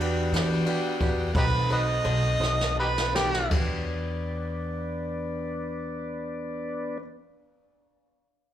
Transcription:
0.00 0.30 E2 loud
0.00 1.32 B3 medium
0.00 0.25 D4 medium
0.00 1.33 D4 medium
0.00 0.25 F#4 medium
0.00 1.32 F#4 medium
0.00 1.32 G4 medium
0.00 0.25 G4 medium
0.00 0.25 B4 medium
0.00 ride medium
0.32 0.64 E3 loud
0.32 0.58 D4 medium
0.32 0.59 F#4 medium
0.32 0.59 G4 medium
0.32 0.59 B4 medium
0.32 snare loud
0.32 ride medium
0.66 0.92 D4 medium
0.66 0.92 F#4 medium
0.66 0.92 G4 medium
0.66 0.93 B4 medium
0.66 ride medium
1.01 1.32 E2 medium
1.01 1.26 D4 medium
1.01 1.27 F#4 medium
1.01 1.27 G4 medium
1.01 1.27 B4 medium
1.01 kick medium
1.01 ride medium
1.33 2.00 B1 loud
1.33 3.49 C4 medium
1.33 3.49 D#4 medium
1.33 1.61 D#4 medium
1.33 1.61 F#4 medium
1.33 3.48 A4 medium
1.33 1.62 A4 medium
1.33 1.62 C5 medium
1.33 3.48 F#5 medium
1.33 kick loud
1.33 ride medium
1.37 1.44 D#4 medium
1.37 1.43 G4 medium
1.37 1.70 B4 loud
1.69 1.96 D#4 medium
1.69 1.96 F#4 medium
1.69 1.96 A4 medium
1.69 1.79 B4 medium
1.69 1.96 C5 medium
1.69 2.75 D#5 loud
1.69 ride medium
2.04 2.37 B1 loud
2.04 2.31 D#4 medium
2.04 2.31 F#4 medium
2.04 2.31 A4 medium
2.04 2.32 C5 medium
2.04 ride medium
2.39 3.47 B1 loud
2.39 2.67 D#4 medium
2.39 2.67 F#4 medium
2.39 2.68 A4 medium
2.39 2.68 C5 medium
2.43 snare medium
2.61 snare medium
2.75 3.03 D#4 medium
2.75 3.04 F#4 medium
2.75 3.04 A4 medium
2.75 3.04 D#5 medium
2.79 2.88 D#4 medium
2.79 2.86 G4 medium
2.79 3.14 B4 loud
2.98 snare medium
3.13 3.41 D#4 medium
3.13 3.41 F#4 medium
3.13 3.51 G4 loud
3.13 3.42 A4 medium
3.13 3.42 C5 medium
3.13 snare loud
3.34 snare medium
3.48 6.98 E2 medium
3.48 6.98 B3 medium
3.48 6.96 D4 medium
3.48 6.98 D4 medium
3.48 6.97 F#4 medium
3.48 6.99 G4 medium
3.48 kick loud
3.48 crash medium
3.54 7.01 B4 medium

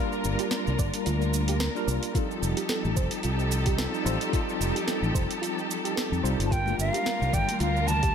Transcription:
0.00 1.75 G3 medium
0.00 2.12 G3 medium
0.00 1.75 A#3 medium
0.00 1.75 D4 medium
0.00 2.12 D4 medium
0.00 1.76 F4 medium
0.00 2.12 F4 medium
0.00 1.76 A#4 loud
0.00 2.11 A#4 medium
0.12 cabasa soft
0.24 0.34 G1 medium
0.24 cabasa medium
0.39 0.46 G4 medium
0.39 open hi-hat soft
0.39 cabasa soft
0.51 0.65 A#4 medium
0.51 snare medium
0.51 open hi-hat soft
0.51 cabasa soft
0.67 0.75 C2 medium
0.67 cabasa soft
0.78 0.88 G1 medium
0.78 0.93 D5 medium
0.78 kick loud
0.78 cabasa medium
0.94 open hi-hat medium
0.94 cabasa soft
1.06 1.67 D2 medium
1.06 1.14 F4 medium
1.06 open hi-hat soft
1.06 cabasa soft
1.22 cabasa soft
1.34 cabasa medium
1.48 1.55 G4 medium
1.48 open hi-hat medium
1.48 cabasa soft
1.60 1.74 A#4 medium
1.60 snare loud
1.60 open hi-hat soft
1.60 cabasa soft
1.75 1.88 G3 medium
1.75 1.88 A#3 medium
1.75 1.88 D4 medium
1.75 1.88 F4 medium
1.75 1.88 A#4 loud
1.75 cabasa soft
1.87 1.97 C2 loud
1.87 2.02 D5 medium
1.87 cabasa medium
2.03 open hi-hat medium
2.03 cabasa soft
2.13 6.47 F3 medium
2.13 3.75 G3 medium
2.13 3.75 C4 medium
2.13 3.76 D#4 medium
2.13 6.47 D#4 medium
2.13 2.23 F4 medium
2.13 3.76 F4 medium
2.13 6.47 G4 medium
2.13 6.47 A4 medium
2.13 3.76 A4 medium
2.13 kick loud
2.13 open hi-hat soft
2.13 cabasa soft
2.31 cabasa soft
2.42 2.52 F1 medium
2.42 cabasa medium
2.57 2.64 G4 medium
2.57 open hi-hat medium
2.57 cabasa soft
2.69 2.83 A4 medium
2.69 snare loud
2.69 open hi-hat soft
2.69 cabasa soft
2.84 2.92 A1 medium
2.84 cabasa soft
2.96 3.06 F1 medium
2.96 3.11 C5 medium
2.96 kick loud
2.96 cabasa medium
3.11 open hi-hat medium
3.11 cabasa soft
3.23 3.85 C2 medium
3.23 3.32 F4 medium
3.23 open hi-hat soft
3.23 cabasa soft
3.39 cabasa soft
3.51 cabasa medium
3.66 3.73 G4 medium
3.66 kick loud
3.66 open hi-hat medium
3.66 cabasa soft
3.77 4.02 G3 medium
3.77 4.03 C4 medium
3.77 4.03 D#4 medium
3.77 4.03 F4 medium
3.77 3.92 A4 medium
3.77 4.03 A4 loud
3.77 snare loud
3.77 open hi-hat soft
3.77 cabasa medium
3.94 cabasa soft
4.04 4.15 A1 medium
4.04 4.29 G3 medium
4.04 4.30 C4 medium
4.04 4.30 D#4 medium
4.04 4.30 F4 medium
4.04 4.30 A4 loud
4.04 4.21 C5 medium
4.04 cabasa medium
4.21 open hi-hat medium
4.21 cabasa soft
4.32 5.66 G3 medium
4.32 5.66 C4 medium
4.32 5.67 D#4 medium
4.32 4.41 F4 medium
4.32 5.67 F4 medium
4.32 5.68 A4 medium
4.32 kick loud
4.32 open hi-hat soft
4.32 cabasa soft
4.49 cabasa soft
4.60 4.70 F1 medium
4.60 cabasa medium
4.75 4.82 G4 medium
4.75 open hi-hat soft
4.75 cabasa soft
4.87 5.01 A4 medium
4.87 snare medium
4.87 open hi-hat soft
4.87 cabasa soft
5.02 5.10 A1 medium
5.02 cabasa soft
5.14 5.24 F1 medium
5.14 5.29 C5 medium
5.14 kick loud
5.14 cabasa medium
5.31 open hi-hat soft
5.31 cabasa soft
5.42 5.50 F4 medium
5.42 open hi-hat soft
5.42 cabasa soft
5.59 cabasa soft
5.71 cabasa medium
5.85 5.91 G4 medium
5.85 open hi-hat soft
5.85 cabasa soft
5.96 6.10 A4 medium
5.96 snare loud
5.96 open hi-hat soft
5.96 cabasa soft
6.11 6.19 F2 medium
6.11 cabasa soft
6.23 6.33 C2 medium
6.23 6.48 G3 medium
6.23 6.48 C4 medium
6.23 6.48 D#4 medium
6.23 6.48 F4 medium
6.23 6.38 C5 medium
6.23 6.49 C5 medium
6.23 cabasa medium
6.39 6.71 G1 medium
6.39 open hi-hat medium
6.39 cabasa soft
6.46 8.15 G3 medium
6.46 8.11 G3 medium
6.46 8.12 A#3 medium
6.46 8.15 D4 medium
6.46 8.15 F4 medium
6.46 6.54 A5 medium
6.50 8.12 D4 medium
6.50 6.59 F4 medium
6.50 8.13 F4 medium
6.50 8.15 A#4 medium
6.50 8.13 A#4 medium
6.50 6.79 G5 loud
6.50 kick loud
6.50 open hi-hat soft
6.50 high bongo soft
6.50 cabasa soft
6.66 high conga medium
6.66 cabasa soft
6.78 6.88 G1 medium
6.78 7.36 F5 loud
6.78 cabasa medium
6.93 7.00 G4 medium
6.93 open hi-hat soft
6.93 high bongo medium
6.93 cabasa soft
7.05 7.20 A#4 medium
7.05 snare medium
7.05 open hi-hat soft
7.05 high conga medium
7.05 cabasa soft
7.20 7.29 C2 medium
7.20 high bongo soft
7.20 cabasa soft
7.32 7.43 G1 medium
7.32 7.48 D5 medium
7.32 7.61 G5 loud
7.32 kick loud
7.32 low conga medium
7.32 cabasa medium
7.48 open hi-hat medium
7.48 high conga medium
7.48 cabasa soft
7.59 8.15 D2 medium
7.59 7.69 F4 medium
7.59 7.89 F5 loud
7.59 open hi-hat soft
7.59 high bongo medium
7.59 cabasa soft
7.76 cabasa soft
7.87 8.15 A5 loud
7.87 high bongo medium
7.87 high conga medium
7.87 low conga medium
7.87 cabasa medium
8.03 8.09 G4 medium
8.03 kick loud
8.03 open hi-hat medium
8.03 cabasa soft

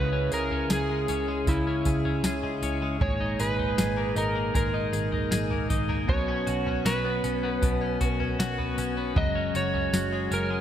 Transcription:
0.00 0.27 C#2 loud
0.00 1.46 C#3 medium
0.00 2.98 C#3 medium
0.00 0.89 G#3 medium
0.00 0.12 C#4 medium
0.00 2.97 C#4 medium
0.00 2.98 E4 medium
0.00 2.98 G#4 medium
0.00 0.33 B4 loud
0.13 0.50 C#4 medium
0.32 0.65 C#2 medium
0.32 0.70 G#4 medium
0.32 0.71 A#4 loud
0.32 tambourine medium
0.51 1.08 C#4 medium
0.51 floor tom medium
0.70 1.04 C#2 loud
0.70 1.86 G#4 medium
0.70 1.50 G#4 loud
0.70 snare loud
0.70 tambourine medium
0.89 1.28 G#3 medium
1.08 1.43 C#2 medium
1.08 1.66 C#4 medium
1.08 tambourine medium
1.28 2.43 G#3 medium
1.47 1.81 C#2 loud
1.47 3.09 C#3 medium
1.47 2.59 E4 medium
1.47 kick medium
1.47 floor tom medium
1.47 tambourine medium
1.67 2.04 C#4 medium
1.85 2.19 C#2 loud
1.85 2.24 G#4 medium
1.85 kick medium
1.85 tambourine medium
2.05 2.62 C#4 medium
2.05 floor tom medium
2.24 2.58 C#2 loud
2.24 3.39 G#4 medium
2.24 snare loud
2.24 tambourine medium
2.43 2.82 G#3 medium
2.43 floor tom medium
2.63 2.96 C#2 loud
2.63 3.09 C#4 medium
2.63 tambourine medium
2.82 3.01 G#3 medium
3.01 3.35 G#1 loud
3.01 6.06 A#2 medium
3.01 6.06 G#3 medium
3.01 4.53 G#3 medium
3.01 6.06 D#4 medium
3.01 3.41 C#5 loud
3.01 kick loud
3.01 floor tom loud
3.20 3.58 D#4 medium
3.39 3.73 G#1 medium
3.39 3.77 G#4 medium
3.39 4.17 B4 loud
3.39 tambourine medium
3.59 4.15 D#4 medium
3.59 floor tom medium
3.78 4.12 G#1 loud
3.78 4.92 G#4 medium
3.78 snare loud
3.78 tambourine medium
3.97 4.34 A#3 medium
4.16 4.50 G#1 loud
4.16 4.73 D#4 medium
4.16 4.55 A#4 medium
4.16 tambourine medium
4.36 5.49 A#3 medium
4.55 4.89 G#1 loud
4.55 6.08 G#3 medium
4.55 5.67 A#4 medium
4.55 kick medium
4.55 floor tom medium
4.55 tambourine medium
4.74 5.11 D#4 medium
4.93 5.27 G#1 loud
4.93 5.30 G#4 medium
4.93 tambourine medium
5.12 5.69 D#4 medium
5.12 floor tom medium
5.31 5.65 G#1 loud
5.31 6.16 G#4 medium
5.31 snare loud
5.31 tambourine medium
5.51 5.88 A#3 medium
5.51 floor tom medium
5.70 6.04 G#1 medium
5.70 6.16 D#4 medium
5.70 kick medium
5.70 tambourine medium
5.89 6.16 A#3 medium
5.89 floor tom medium
6.08 6.42 B1 loud
6.08 7.61 B2 medium
6.08 10.61 F#3 medium
6.08 9.13 B3 medium
6.08 10.61 C#4 medium
6.08 6.88 C#5 loud
6.08 kick loud
6.08 floor tom loud
6.28 6.66 C#4 medium
6.47 6.81 B1 loud
6.47 6.85 F#4 medium
6.47 tambourine medium
6.67 7.24 C#4 medium
6.67 floor tom medium
6.85 7.19 B1 loud
6.85 8.00 F#4 medium
6.85 8.06 B4 loud
6.85 snare loud
6.85 tambourine medium
7.05 7.42 B3 medium
7.24 7.58 B1 loud
7.24 7.81 C#4 medium
7.24 tambourine medium
7.43 8.57 B3 medium
7.62 7.96 B1 loud
7.62 9.16 B2 medium
7.62 kick medium
7.62 floor tom medium
7.62 tambourine medium
7.81 8.20 C#4 medium
8.01 8.35 B1 loud
8.01 8.39 F#4 medium
8.01 kick medium
8.01 tambourine medium
8.06 8.74 A#4 loud
8.20 8.78 C#4 medium
8.20 floor tom medium
8.39 8.73 B1 loud
8.39 9.55 F#4 medium
8.39 snare loud
8.39 tambourine medium
8.58 8.96 B3 medium
8.58 floor tom medium
8.78 9.12 B1 loud
8.78 9.35 C#4 medium
8.78 tambourine medium
8.97 9.24 B3 medium
9.16 9.50 F#1 loud
9.16 10.61 F#3 medium
9.16 10.61 G#3 medium
9.16 9.53 D#5 loud
9.16 kick loud
9.16 floor tom loud
9.35 9.74 C#4 medium
9.55 9.88 F#1 loud
9.55 9.92 F#4 medium
9.55 10.35 C#5 loud
9.55 tambourine medium
9.74 10.31 C#4 medium
9.74 floor tom medium
9.93 10.27 F#1 loud
9.93 10.61 F#4 medium
9.93 snare loud
9.93 tambourine medium
10.12 10.50 G#3 medium
10.31 10.61 F#1 loud
10.31 10.61 C#4 medium
10.31 10.61 A#4 medium
10.31 tambourine medium
10.50 10.61 G#3 medium

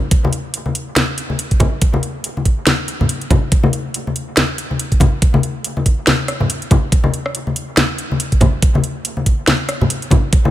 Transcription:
0.11 kick loud
0.11 closed hi-hat medium
0.25 high conga medium
0.33 closed hi-hat medium
0.54 closed hi-hat medium
0.66 high conga medium
0.75 closed hi-hat medium
0.96 snare loud
0.96 closed hi-hat medium
0.96 high conga medium
1.18 closed hi-hat medium
1.30 high conga medium
1.39 closed hi-hat medium
1.51 kick medium
1.51 closed hi-hat soft
1.60 kick loud
1.60 closed hi-hat medium
1.60 high conga medium
1.60 low conga loud
1.81 kick loud
1.81 closed hi-hat medium
1.94 high conga medium
2.03 closed hi-hat medium
2.24 closed hi-hat medium
2.37 high conga medium
2.45 kick medium
2.45 closed hi-hat medium
2.67 snare loud
2.67 closed hi-hat medium
2.67 high conga medium
2.88 closed hi-hat medium
3.01 high conga medium
3.01 low conga medium
3.09 closed hi-hat medium
3.21 closed hi-hat soft
3.30 kick loud
3.30 closed hi-hat soft
3.30 high conga medium
3.30 low conga loud
3.52 kick loud
3.52 closed hi-hat medium
3.64 high conga loud
3.73 closed hi-hat medium
3.94 closed hi-hat medium
4.07 high conga medium
4.16 closed hi-hat medium
4.37 snare loud
4.37 closed hi-hat medium
4.37 high conga medium
4.58 closed hi-hat soft
4.71 high conga medium
4.79 closed hi-hat medium
4.92 kick medium
4.92 closed hi-hat soft
5.00 kick loud
5.00 closed hi-hat soft
5.00 high conga medium
5.00 low conga medium
5.22 kick loud
5.22 closed hi-hat medium
5.34 high conga loud
5.43 closed hi-hat soft
5.64 closed hi-hat medium
5.77 high conga medium
5.86 kick medium
5.86 closed hi-hat medium
6.07 snare loud
6.07 closed hi-hat medium
6.07 high conga medium
6.28 cross-stick medium
6.28 closed hi-hat soft
6.40 high conga medium
6.40 low conga medium
6.50 closed hi-hat medium
6.62 closed hi-hat soft
6.71 kick loud
6.71 closed hi-hat soft
6.71 high conga medium
6.71 low conga medium
6.92 kick loud
6.92 closed hi-hat medium
7.04 high conga medium
7.14 closed hi-hat soft
7.26 cross-stick medium
7.35 closed hi-hat medium
7.47 high conga medium
7.56 closed hi-hat medium
7.77 snare loud
7.77 closed hi-hat medium
7.77 high conga medium
7.98 closed hi-hat soft
8.12 high conga medium
8.20 closed hi-hat medium
8.32 kick medium
8.32 closed hi-hat soft
8.41 kick medium
8.41 closed hi-hat soft
8.41 high conga medium
8.41 low conga medium
8.62 kick loud
8.62 closed hi-hat medium
8.75 high conga medium
8.84 closed hi-hat medium
9.05 closed hi-hat medium
9.17 high conga medium
9.26 kick medium
9.26 closed hi-hat medium
9.47 snare loud
9.47 closed hi-hat medium
9.47 high conga medium
9.69 cross-stick medium
9.69 closed hi-hat soft
9.81 high conga medium
9.81 low conga medium
9.90 closed hi-hat medium
10.02 closed hi-hat soft
10.11 kick loud
10.11 closed hi-hat soft
10.11 high conga medium
10.11 low conga medium
10.33 kick loud
10.33 closed hi-hat medium
10.45 high conga medium

